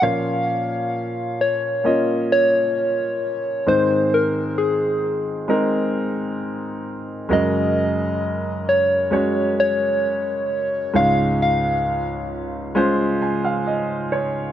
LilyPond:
<<
  \new Staff \with { instrumentName = "Soft synth lead" } { \time 4/4 \key bes \minor \tempo 4 = 66 f''4. des''4 des''4. | c''8 bes'8 aes'4 r2 | ees''4. des''4 des''4. | f''8 f''4 r2 r8 | }
  \new Staff \with { instrumentName = "Grand piano" } { \time 4/4 \key bes \minor << { r1 | r1 | r1 | r2 r8 aes''16 f''16 ees''8 des''8 | } \\ { <bes des' f' des''>2 <bes des' f' ees''>2 | <aes c' ees' c''>2 <aes c' ees' bes'>2 | <aes des' ges' bes'>2 <aes des' ges' des''>2 | <aes des' f' des''>2 <aes des' f' c''>2 | } >> }
  \new Staff \with { instrumentName = "Grand piano" } { \clef bass \time 4/4 \key bes \minor <bes, f>1 | <aes, ees>1 | <ges, des>1 | <des, aes,>1 | }
>>